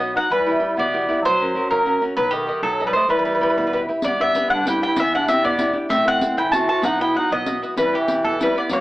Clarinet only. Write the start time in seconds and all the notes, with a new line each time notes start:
Already playing: B3
0.16 D#4
0.31 G3
0.77 B3
1.22 F#3
1.70 F#3
2.15 F#3
2.32 D#3
2.63 F#3
2.87 G3
2.96 A3
3.08 G3
4.07 B3
4.23 B3
4.54 D4
4.69 E4
4.87 E4
5.03 B3
5.16 D4
5.31 C4
5.45 B3
5.90 C4
6.06 C4
6.39 E4
6.55 F#4
6.70 F#4
6.84 D#4
7.01 E4
7.18 D#4
7.33 B3
7.81 G3
7.96 E3
8.27 E3
8.42 G3
8.58 B3
8.72 A#3